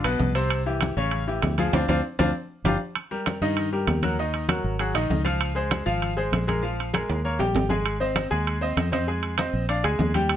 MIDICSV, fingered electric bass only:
0, 0, Header, 1, 2, 480
1, 0, Start_track
1, 0, Tempo, 305966
1, 802, Time_signature, 4, 2, 24, 8
1, 16261, End_track
2, 0, Start_track
2, 0, Title_t, "Fingered electric bass"
2, 0, Program_c, 0, 33
2, 74, Note_on_c, 0, 35, 68
2, 300, Note_off_c, 0, 35, 0
2, 315, Note_on_c, 0, 36, 88
2, 1432, Note_off_c, 0, 36, 0
2, 1519, Note_on_c, 0, 33, 85
2, 2191, Note_off_c, 0, 33, 0
2, 2245, Note_on_c, 0, 38, 84
2, 2691, Note_off_c, 0, 38, 0
2, 2718, Note_on_c, 0, 38, 93
2, 2899, Note_off_c, 0, 38, 0
2, 2955, Note_on_c, 0, 38, 86
2, 3137, Note_off_c, 0, 38, 0
2, 3442, Note_on_c, 0, 38, 90
2, 3622, Note_off_c, 0, 38, 0
2, 4146, Note_on_c, 0, 31, 86
2, 4333, Note_off_c, 0, 31, 0
2, 5358, Note_on_c, 0, 43, 79
2, 6031, Note_off_c, 0, 43, 0
2, 6076, Note_on_c, 0, 39, 88
2, 7194, Note_off_c, 0, 39, 0
2, 7283, Note_on_c, 0, 32, 83
2, 7731, Note_off_c, 0, 32, 0
2, 7758, Note_on_c, 0, 34, 68
2, 7985, Note_off_c, 0, 34, 0
2, 8006, Note_on_c, 0, 37, 85
2, 9120, Note_off_c, 0, 37, 0
2, 9200, Note_on_c, 0, 32, 81
2, 9873, Note_off_c, 0, 32, 0
2, 9918, Note_on_c, 0, 34, 85
2, 11035, Note_off_c, 0, 34, 0
2, 11131, Note_on_c, 0, 39, 83
2, 11575, Note_off_c, 0, 39, 0
2, 11604, Note_on_c, 0, 34, 66
2, 11828, Note_off_c, 0, 34, 0
2, 11847, Note_on_c, 0, 32, 83
2, 12960, Note_off_c, 0, 32, 0
2, 13043, Note_on_c, 0, 39, 77
2, 13714, Note_off_c, 0, 39, 0
2, 13758, Note_on_c, 0, 41, 88
2, 14874, Note_off_c, 0, 41, 0
2, 14958, Note_on_c, 0, 34, 77
2, 15408, Note_off_c, 0, 34, 0
2, 15442, Note_on_c, 0, 38, 71
2, 15666, Note_off_c, 0, 38, 0
2, 15677, Note_on_c, 0, 39, 90
2, 16261, Note_off_c, 0, 39, 0
2, 16261, End_track
0, 0, End_of_file